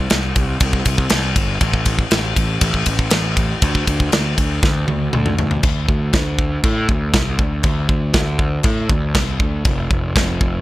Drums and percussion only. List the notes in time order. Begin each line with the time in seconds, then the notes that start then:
0.10 snare, ride
0.36 kick, ride
0.60 kick, ride
0.73 kick
0.85 kick, ride
0.98 kick
1.10 snare, ride
1.36 kick, ride
1.61 kick, ride
1.74 kick
1.85 kick, ride
1.99 kick
2.11 snare, ride
2.36 kick, ride
2.61 kick, ride
2.74 kick
2.86 kick, ride
2.99 kick
3.10 snare, ride
3.37 kick, ride
3.62 kick, ride
3.75 kick
3.87 kick, ride
4.00 kick
4.12 snare, ride
4.38 kick, ride
4.63 kick, snare
4.88 high tom
5.13 mid tom
5.26 mid tom
5.39 floor tom
5.51 floor tom
5.63 kick, china
5.89 kick
6.13 kick, snare, china
6.39 kick
6.64 kick, china
6.89 kick
7.13 kick, snare, china
7.39 kick
7.63 kick, china
7.89 kick
8.13 kick, snare, china
8.39 kick
8.63 kick, china
8.89 kick
9.14 kick, snare, china
9.40 kick
9.65 kick, china
9.91 kick
10.16 kick, snare, china
10.41 kick